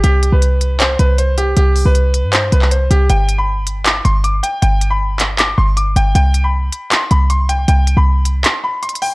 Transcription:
<<
  \new Staff \with { instrumentName = "Grand piano" } { \time 4/4 \key g \phrygian \tempo 4 = 157 g'8. b'4~ b'16 c''8 b'8 c''8 g'8 | g'8. b'4~ b'16 c''8 b'8 c''8 g'8 | g''8. b''4~ b''16 d'''8 c'''8 d'''8 g''8 | g''8. b''4~ b''16 d'''8 c'''8 d'''8 g''8 |
g''8. b''4~ b''16 c'''8 b''8 c'''8 g''8 | g''8. b''4~ b''16 c'''8 b''8 c'''8 g''8 | }
  \new Staff \with { instrumentName = "808-style bass" } { \clef bass \time 4/4 \key g \phrygian c,8. c,4.~ c,16 c,4. | c,8. c,4 g,8. c,4 c,8 | g,,2~ g,,8 g,,4 r8 | g,,2~ g,,8 g,,4 g,,8 |
c,4. r4 c,4. | c,8. c,4~ c,16 r2 | }
  \new DrumStaff \with { instrumentName = "Drums" } \drummode { \time 4/4 hh8 hh8 hh8 hh8 <hc hh>8 hh8 hh8 hh8 | hh8 hho8 hh8 hh8 <hc hh>8 hh16 hc16 hh8 hh8 | hh8 hh8 r8 hh8 <hc hh>8 hh8 hh8 hh8 | hh8 hh8 r8 <hc hh>8 <hc hh>4 hh8 hh8 |
hh8 hh8 r8 hh8 <hc hh>8 hh8 hh8 hh8 | hh8 hh8 r8 hh8 <hc hh>4 \tuplet 3/2 { hh16 hh16 hh16 hho16 r16 r16 } | }
>>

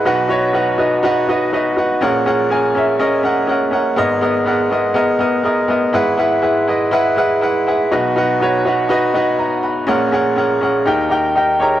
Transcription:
<<
  \new Staff \with { instrumentName = "Upright piano" } { \time 4/4 \key b \major \tempo 4 = 122 << { r1 | r1 | r1 | r1 |
r2. <dis'' ais''>8 <fis'' b''>8~ | <fis'' b''>8 r2. <gis' cis''>8 | } \\ { <dis' fis' b' fis''>8 <dis' fis' b' cis''>8 <dis' fis' b' fis''>8 <dis' fis' b' dis''>8 <dis' fis' b' fis''>8 <dis' fis' b' dis''>8 <dis' fis' b' dis''>8 <dis' fis' b' fis''>8 | <cis' gis' ais' fis''>8 <cis' gis' ais' fis''>8 <cis' gis' ais' gis''>8 <cis' gis' ais' e''>8 <cis' gis' ais' dis''>8 <cis' gis' ais' fis''>8 <cis' gis' ais' fis''>8 <cis' gis' ais' fis''>8 | <b gis' ais' dis''>8 <b gis' ais' dis''>8 <b gis' ais' fis''>8 <b gis' ais' dis''>8 <b gis' ais' dis''>8 <b gis' ais' dis''>8 <b gis' ais' dis''>8 <b gis' ais' dis''>8 | <e' gis' b' fis''>8 <e' gis' b' fis''>8 <e' gis' b' fis''>8 <e' gis' b' dis''>8 <e' gis' b' fis''>8 <e' gis' b' fis''>8 <e' gis' b' fis''>8 <e' gis' b' fis''>8 |
<dis' fis' b' fis''>8 <dis' fis' b' fis''>8 <dis' fis' b' cis''>8 <dis' fis' b' fis''>8 <dis' fis' b' dis''>8 <dis' fis' b' fis''>8 r4 | <cis' gis' ais' fis''>8 <cis' gis' ais' fis''>8 <cis' gis' ais' fis''>8 <cis' gis' ais' fis''>8 <dis' g' ais' g''>8 <dis' g' ais' g''>8 <dis' g' ais' g''>8 <dis' g' ais' ais''>8 | } >> }
  \new Staff \with { instrumentName = "Upright piano" } { \clef bass \time 4/4 \key b \major <b,, b,>1 | <ais,, ais,>1 | <gis,, gis,>1 | <gis,, gis,>1 |
<b,, b,>1 | <ais,, ais,>2 <dis, dis>2 | }
>>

